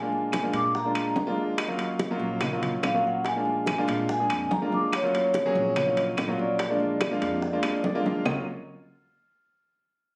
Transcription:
Already playing: A#1 G#5
0.01 G#3 A#3 D4 F4
0.12 high bongo, high conga
0.32 high bongo, high conga, high timbale, low timbale, claves
0.43 G#3 A#3 D4 F4
0.53 A#2 D6, high bongo, high conga, high timbale
0.75 A#5, high bongo, high conga
0.85 G#3 A#3 D4 F4
0.95 high conga, high timbale, claves
1.16 D#2, high bongo, low bongo, high conga, low timbale
1.27 G#3 A#3 D4 F4
1.38 high bongo
1.58 D#5, high bongo, high conga, high timbale, claves
1.68 F#3 A#3 C#4 F4
1.78 high bongo, high conga, high timbale
1.99 high bongo, high conga, high timbale, low timbale
2.11 F#3 A#3 C#4 F4
2.19 A#1, high bongo, high conga
2.41 D#5, high bongo, high conga, low conga, high timbale, claves
2.52 F#3 A#3 C#4 F4
2.63 high conga, low conga, high timbale
2.83 A#1 F5, high bongo, low bongo, high conga, high timbale, low timbale, claves
2.94 F#3 A#3 C#4 F4
3.04 F#5, high bongo, high conga
3.25 G#5, high bongo, high conga, high timbale
3.36 G#3 A#3 D4 F4
3.46 high bongo, high conga
3.66 high bongo, high conga, high timbale, low timbale, claves
3.78 G#3 A#3 D4 F4
3.88 A#2, high bongo, high conga, high timbale
4.09 G#5, high bongo, high conga
4.20 G#3 A#3 D4 G#4
4.30 F2, high conga, high timbale, claves
4.51 D#2 A#5, high bongo, low bongo, high conga, low timbale
4.62 G#3 A#3 D4 F4
4.72 D6, high bongo, high conga
4.93 C#5, high bongo, high conga, high timbale, claves
5.03 F#3 A#3 C#4 F4
5.14 high bongo, high conga, high timbale
5.34 high bongo, high conga, high timbale, low timbale
5.45 F#3 A#3 C#4 G#4
5.55 A#1, high bongo, high conga
5.76 C#5, high bongo, high conga, low conga, high timbale, claves
5.86 F#3 A#3 C#4 F4
5.97 D#5, high conga, high timbale
6.17 A#1, high bongo, low bongo, high conga, high timbale, low timbale, claves
6.28 F#3 A#3 C#4 F4
6.38 D5, high bongo, high conga
6.59 high bongo, high conga, high timbale
6.70 G#3 A#3 D4 F4
6.80 high bongo, high conga
7.01 high bongo, high conga, high timbale, low timbale, claves
7.11 G#3 A#3 D4 F4
7.22 F2, high bongo, high conga, high timbale
7.42 high bongo, high conga
7.53 G#3 A#3 D4 F4
7.63 F2, high bongo, high conga, high timbale, claves
7.84 D#2 D5, high conga, low timbale
7.95 G#3 A#3 D4 F4
8.06 F5, low bongo, high conga
8.26 D#2 F#3 A#3 C#4 F4 D#5, low bongo, low conga, low timbale, claves

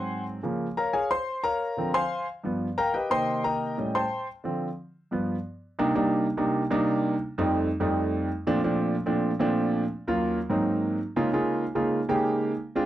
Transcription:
Already playing: G#2 F#3 C4 C5 F#5 G#5 C6
0.43 C#3 F3 A#3
0.77 A#4 C#5 F5 A#5
0.93 G#4 C#5 F5 G#5
1.11 C5 C6
1.44 A#4 C#5 F5 A#5
1.77 D3 F3 C4
1.94 C5 F5 G#5 C6
2.44 G2 F3 B3
2.78 A#4 F5 G5 A#5
2.94 G4 B4 D#5 G5
3.10 C3 D#3 A#3 C5 D#5 G5 C6
3.44 A#4 D#5 G5 A#5
3.78 A2 G3 C#4
3.95 C5 G5 A5 C6
4.44 D3 F3 C4
5.11 G2 F3 B3
5.79 C3 G3 A#3 D4 D#4
5.95 C3 G3 A#3 D4 D#4
6.37 C3 G3 A#3 D4 D#4
6.70 C3 G3 A#3 D4 D#4
7.38 F2 G3 A3 C4 D#4
7.80 F2 G3 A3 C4 D#4
8.47 A#2 F3 A3 C4 D4
8.64 A#2 F3 A3 C4 D4
9.06 A#2 F3 A3 C4 D4
9.39 A#2 F3 A3 C4 D4
10.07 D#2 F#3 A#3 C#4 F4
10.50 G#2 F#3 A#3 C4 D#4
11.16 C#3 G#3 A#3 D#4 F4
11.33 C#3 G#3 A#3 D#4 F4
11.75 C#3 G#3 A#3 D#4 F4
12.09 C#3 G#3 A#3 D#4 G4
12.75 G#3 C4 D4 F4

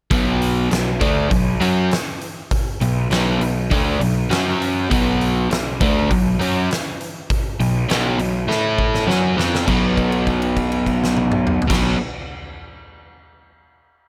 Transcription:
0.11 B1 B2 F#3 B3, kick, open hi-hat
0.42 open hi-hat
0.71 B1 B2 F#3, snare, open hi-hat
1.00 D2 D3 A3 D4, kick, open hi-hat
1.30 B1 B2 F#3, kick, open hi-hat
1.61 F#2 F#3 C#4 F#4, open hi-hat
1.91 snare, open hi-hat
2.21 open hi-hat
2.51 kick, open hi-hat
2.81 B1 B2 F#3, open hi-hat
3.10 B1 B2 F#3 B3, snare, open hi-hat
3.40 B1 B2 F#3, open hi-hat
3.70 D2 D3 A3 D4, kick, open hi-hat
4.00 B1 B2 F#3, open hi-hat
4.30 F#2 F#3 C#4 F#4, snare, open hi-hat
4.62 open hi-hat
4.90 B1 B2 F#3 B3, kick, open hi-hat
5.21 open hi-hat
5.50 B1 B2 F#3, snare, open hi-hat
5.81 D2 D3 A3 D4, kick, open hi-hat
6.10 B1 B2 F#3, kick, open hi-hat
6.40 F#2 F#3 C#4 F#4, open hi-hat
6.71 snare, open hi-hat
7.01 open hi-hat
7.30 kick, open hi-hat
7.60 B1 B2 F#3, open hi-hat
7.89 B1 B2 F#3 B3, snare, open hi-hat
8.18 B1 B2 F#3, open hi-hat
8.47 A2 A3 E4 A4, snare
8.78 kick
8.94 snare
9.07 F#2 F#3 C#4 F#4, snare
9.37 F2 F3 C4 F4, snare
9.55 snare
9.66 B1 B2 F#3, kick, crash
9.71 B3
9.97 kick, crash
10.12 crash
10.27 kick, crash
10.42 crash
10.57 kick, crash
10.72 crash
10.86 kick, crash
11.04 snare
11.17 high tom
11.32 mid tom
11.47 mid tom
11.62 floor tom
11.67 B1 B2 F#3 B3, kick, crash
11.73 snare

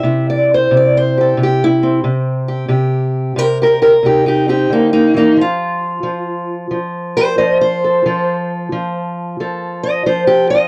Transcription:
Already playing: E5
0.03 C3 E4
0.30 D5
0.54 C5
0.71 C3
0.77 D5
0.97 C5
1.17 G4 A4
1.37 C3
1.43 G4
1.64 E4
1.83 C4
2.04 C3
2.48 G4
2.68 C3 G4
3.36 C3 G4 A#4
3.62 G4 A#4
3.82 G4 A#4
4.03 C3 D#4 G4
4.26 D#4 G4
4.48 C4 D#4 G4
4.70 D3 A#3 D#4
4.93 A#3 D#4
5.14 E3 A#3 D#4
5.37 F3
5.41 F4
6.03 F3
6.71 F3
7.17 G4 C5
7.38 F3 C5 D#5
7.61 C5
7.84 A4
8.06 F3 A4
8.72 F3
9.40 F3 A4
9.83 D#5
10.06 F3 C5
10.27 G4
10.50 D#5
10.54 F4

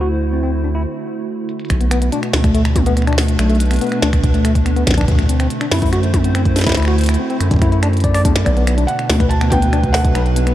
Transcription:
Already playing: D2 D3 A3 E4 F#4 C5
0.01 F#4
0.33 C4
0.43 C4
0.64 D4
0.75 E4
1.49 closed hi-hat
1.60 closed hi-hat
1.65 closed hi-hat
1.70 B1 B2, finger snap, kick, closed hi-hat
1.81 B3, closed hi-hat
1.91 B3, finger snap, closed hi-hat
2.02 B3, closed hi-hat
2.12 D4, closed hi-hat
2.23 finger snap, closed hi-hat
2.33 D2, snare, open hi-hat, high tom
2.44 A3, finger snap, kick, closed hi-hat
2.54 A3 D4, closed hi-hat
2.65 finger snap, closed hi-hat
2.76 B3, kick, closed hi-hat, high tom
2.86 B3, closed hi-hat
2.97 B3, finger snap, closed hi-hat
3.02 finger snap
3.07 D4, finger snap, closed hi-hat
3.13 finger snap
3.18 finger snap, snare, open hi-hat
3.22 B4
3.28 closed hi-hat
3.39 B1 A3, finger snap, closed hi-hat
3.50 A3, closed hi-hat
3.55 closed hi-hat
3.60 closed hi-hat
3.66 closed hi-hat
3.71 B3, finger snap, closed hi-hat
3.73 closed hi-hat
3.76 closed hi-hat
3.79 B3, closed hi-hat
3.81 closed hi-hat
3.84 closed hi-hat
3.87 closed hi-hat
3.89 finger snap, closed hi-hat
3.92 B3, closed hi-hat
4.02 D2 D4, snare, closed hi-hat
4.13 finger snap, kick, closed hi-hat
4.24 kick, closed hi-hat
4.34 A3, closed hi-hat
4.45 A3, finger snap, closed hi-hat
4.55 kick, closed hi-hat
4.66 B3, finger snap, closed hi-hat
4.76 B3, closed hi-hat
4.87 B1 B3, finger snap, kick, snare, closed hi-hat
4.91 kick, snare
4.94 D4, finger snap, kick, snare
4.98 kick, closed hi-hat
5.01 finger snap, kick
5.05 D2, kick
5.08 D3, kick, closed hi-hat
5.12 kick
5.15 kick
5.19 finger snap, kick, closed hi-hat
5.22 kick
5.26 C4, kick, closed hi-hat
5.40 C4, finger snap, closed hi-hat
5.47 C5, closed hi-hat
5.61 D4, finger snap, closed hi-hat
5.70 F#2 E4, snare, open hi-hat, high tom
5.79 E4, kick, closed hi-hat, open hi-hat
5.86 open hi-hat
5.93 F#4, finger snap, closed hi-hat
6.03 closed hi-hat
6.14 finger snap, kick, closed hi-hat, high tom
6.24 C4, closed hi-hat
6.35 C4, finger snap, closed hi-hat
6.45 kick, closed hi-hat
6.56 D4, snare, open hi-hat
6.59 snare
6.61 snare
6.64 finger snap, kick, snare
6.67 E4, finger snap, snare, closed hi-hat
6.69 finger snap, snare
6.72 finger snap, snare
6.75 D2 E4, finger snap, snare, closed hi-hat
6.80 finger snap
6.82 finger snap, closed hi-hat
6.85 F#4, finger snap
6.88 finger snap
6.98 closed hi-hat
7.01 closed hi-hat
7.04 closed hi-hat
7.06 finger snap, closed hi-hat
7.14 closed hi-hat
7.19 C4
7.30 C4, closed hi-hat
7.41 F#2, finger snap, closed hi-hat
7.51 D4, kick, closed hi-hat
7.54 kick
7.56 kick
7.59 kick
7.62 E4, finger snap, kick, closed hi-hat
7.72 E4, closed hi-hat
7.83 D4, finger snap, closed hi-hat
7.93 closed hi-hat
7.97 closed hi-hat
8.00 kick, closed hi-hat
8.04 D5, closed hi-hat
8.14 D5, finger snap, open hi-hat
8.25 E2 D4, kick, closed hi-hat
8.36 F#2, finger snap, snare, closed hi-hat
8.45 B1 B2 B3 D5, finger snap, kick, closed hi-hat
8.57 B3, closed hi-hat
8.61 D4
8.67 B3, finger snap, closed hi-hat
8.78 D4, closed hi-hat
8.87 B4 F#5, closed hi-hat
8.99 F#3, finger snap, closed hi-hat
9.10 D2 A3, snare, open hi-hat, high tom
9.20 B4, finger snap, kick, closed hi-hat
9.29 A5, closed hi-hat
9.41 B3, finger snap, closed hi-hat
9.50 B3 G5, kick, closed hi-hat, high tom
9.62 B3, closed hi-hat
9.73 D4, finger snap, closed hi-hat
9.83 kick, closed hi-hat
9.93 F#5, finger snap, snare, open hi-hat
10.05 A3, kick, closed hi-hat
10.15 B1 B4, finger snap, closed hi-hat
10.26 closed hi-hat
10.36 B3, closed hi-hat
10.47 B3, finger snap, closed hi-hat

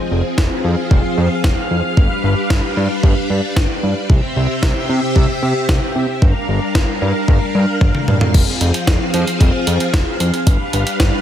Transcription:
Already playing: F3 C4 G#4 F5
0.11 F1
0.38 F1, kick, snare
0.64 F2
0.91 F1, kick
1.17 F2
1.44 F1, kick, snare
1.71 F2
1.97 G1 G3 D4 B4, kick
2.24 G1
2.50 G1, kick, snare
2.77 G2
3.03 G1, kick
3.30 G2
3.56 G1, kick, snare
3.83 G2
4.10 C2 C3 C4 G4 E5, kick
4.36 C2
4.63 C2, kick, snare
4.89 C3
5.16 C2, kick
5.43 C3
5.69 C2, kick, snare
5.96 C3
6.22 G1 G3 D4 A#4 F5, kick
6.49 G1
6.75 G1, kick, snare
7.02 G2
7.28 G1, kick
7.55 G2
7.81 G1, kick, high tom
7.95 mid tom
8.08 G2, mid tom
8.21 floor tom
8.34 F1 F3 C4 G#4, kick, crash
8.61 F1, closed hi-hat
8.74 closed hi-hat
8.87 F1, kick, snare, closed hi-hat
9.14 F2, closed hi-hat
9.27 closed hi-hat
9.41 F1, kick, closed hi-hat
9.67 F2, closed hi-hat
9.80 closed hi-hat
9.94 F1, kick, snare, closed hi-hat
10.20 F2, closed hi-hat
10.34 closed hi-hat
10.47 G1 G3 D4 B4, kick, closed hi-hat
10.73 G1, closed hi-hat
10.87 closed hi-hat
11.00 G1, kick, snare, closed hi-hat

